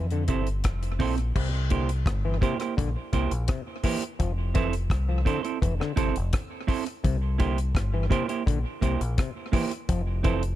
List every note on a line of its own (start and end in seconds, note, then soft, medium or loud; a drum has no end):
0.00 0.27 F2 loud
0.10 0.24 D3 medium
0.10 closed hi-hat soft
0.28 0.65 G1 medium
0.28 0.42 C3 medium
0.28 0.47 C4 medium
0.28 0.47 E4 medium
0.28 0.47 A4 medium
0.28 0.48 C5 medium
0.28 kick medium
0.28 closed hi-hat medium
0.47 closed hi-hat medium
0.64 0.98 F1 loud
0.64 kick loud
0.64 cross-stick loud
0.64 closed hi-hat medium
0.83 closed hi-hat soft
0.99 1.34 A#1 loud
0.99 1.18 C4 medium
0.99 1.18 E4 medium
0.99 1.17 A4 medium
0.99 1.16 C5 loud
0.99 kick loud
0.99 open hi-hat medium
1.17 muted clean electric guitar stroke soft
1.17 closed hi-hat medium
1.36 2.03 C2 loud
1.36 1.48 C3 medium
1.36 kick loud
1.36 crash loud
1.70 1.84 D3 medium
1.70 1.89 A#3 medium
1.70 1.89 E4 medium
1.70 1.89 G4 medium
1.70 1.89 C5 medium
1.70 kick medium
1.70 closed hi-hat medium
1.89 closed hi-hat medium
2.06 2.40 G1 loud
2.06 kick loud
2.06 cross-stick loud
2.06 closed hi-hat medium
2.25 2.37 E3 medium
2.41 2.55 C3 medium
2.41 2.60 A#3 medium
2.41 2.59 E4 medium
2.41 2.59 G4 medium
2.41 2.58 C5 loud
2.41 kick loud
2.41 closed hi-hat medium
2.59 2.74 A#3 soft
2.59 2.74 E4 medium
2.59 2.74 G4 medium
2.59 2.73 C5 medium
2.59 cross-stick medium
2.59 closed hi-hat medium
2.77 2.95 A#1 loud
2.77 2.90 D3 medium
2.77 kick loud
2.77 closed hi-hat medium
3.13 3.31 C2 loud
3.13 3.26 C3 medium
3.13 3.31 A#3 medium
3.13 3.31 E4 medium
3.13 3.31 G4 medium
3.13 3.32 C5 medium
3.13 kick medium
3.13 closed hi-hat medium
3.31 3.48 A#1 loud
3.31 closed hi-hat medium
3.48 3.61 C3 medium
3.48 kick loud
3.48 cross-stick loud
3.48 closed hi-hat loud
3.83 3.97 E3 medium
3.83 4.02 A#3 loud
3.83 4.02 E4 loud
3.83 4.03 G4 medium
3.83 4.03 C5 medium
3.83 kick loud
3.83 open hi-hat loud
4.02 closed hi-hat medium
4.19 4.87 F1 loud
4.19 4.32 F3 medium
4.19 kick loud
4.19 closed hi-hat medium
4.54 4.68 E3 medium
4.54 4.73 C4 medium
4.54 4.73 E4 loud
4.54 4.74 A4 loud
4.54 4.74 C5 medium
4.54 kick loud
4.54 closed hi-hat medium
4.73 closed hi-hat medium
4.90 5.24 C2 medium
4.90 kick loud
4.90 cross-stick loud
4.90 closed hi-hat medium
5.09 5.21 F3 medium
5.25 5.39 D3 medium
5.25 5.44 C4 medium
5.25 5.43 E4 medium
5.25 5.43 A4 loud
5.25 5.42 C5 medium
5.25 kick loud
5.25 closed hi-hat medium
5.43 5.58 C4 medium
5.43 5.58 E4 medium
5.43 5.58 A4 medium
5.43 5.57 C5 medium
5.43 closed hi-hat medium
5.62 5.79 F1 medium
5.62 5.74 E3 medium
5.62 kick loud
5.62 closed hi-hat medium
5.80 5.92 D3 medium
5.80 cross-stick medium
5.96 6.15 G1 medium
5.96 6.10 C3 medium
5.96 6.15 C4 medium
5.96 6.15 E4 medium
5.96 6.15 A4 medium
5.96 6.15 C5 medium
5.96 kick medium
5.96 closed hi-hat medium
6.16 6.32 F1 medium
6.16 closed hi-hat medium
6.33 kick loud
6.33 cross-stick loud
6.33 closed hi-hat loud
6.67 6.86 C4 medium
6.67 6.86 E4 medium
6.67 6.86 A4 medium
6.67 6.85 C5 medium
6.67 kick loud
6.67 open hi-hat loud
6.86 muted clean electric guitar stroke soft
6.86 closed hi-hat medium
7.04 7.72 C2 loud
7.04 7.16 C3 medium
7.04 kick loud
7.04 closed hi-hat medium
7.38 7.52 D3 medium
7.38 7.57 A#3 medium
7.38 7.57 E4 medium
7.38 7.58 G4 loud
7.38 7.58 C5 medium
7.38 kick loud
7.38 closed hi-hat medium
7.58 closed hi-hat medium
7.75 8.08 G1 loud
7.75 kick loud
7.75 cross-stick loud
7.75 closed hi-hat medium
7.94 8.06 E3 medium
8.10 8.23 C3 loud
8.10 8.28 A#3 medium
8.10 8.29 E4 loud
8.10 8.28 G4 medium
8.10 8.27 C5 loud
8.10 kick loud
8.10 closed hi-hat medium
8.28 8.43 A#3 medium
8.28 8.43 E4 medium
8.28 8.43 G4 medium
8.28 8.42 C5 medium
8.28 closed hi-hat medium
8.46 8.64 A#1 loud
8.46 8.59 D3 medium
8.46 kick loud
8.46 closed hi-hat medium
8.81 8.99 C2 medium
8.81 8.95 C3 medium
8.81 9.00 A#3 medium
8.81 9.00 E4 medium
8.81 9.00 G4 medium
8.81 9.00 C5 medium
8.81 kick loud
8.81 closed hi-hat medium
9.01 9.17 A#1 loud
9.01 closed hi-hat medium
9.18 9.30 C3 medium
9.18 kick loud
9.18 cross-stick loud
9.18 closed hi-hat loud
9.52 9.65 E3 medium
9.52 9.70 A#3 medium
9.52 9.71 E4 medium
9.52 9.71 G4 medium
9.52 9.71 C5 medium
9.52 kick loud
9.52 open hi-hat loud
9.71 closed hi-hat medium
9.89 10.55 F1 loud
9.89 10.01 F3 medium
9.89 kick loud
9.89 closed hi-hat medium
10.23 10.37 E3 medium
10.23 10.42 C4 medium
10.23 10.42 E4 medium
10.23 10.42 A4 medium
10.23 10.42 C5 medium
10.23 kick loud
10.23 closed hi-hat medium
10.43 closed hi-hat medium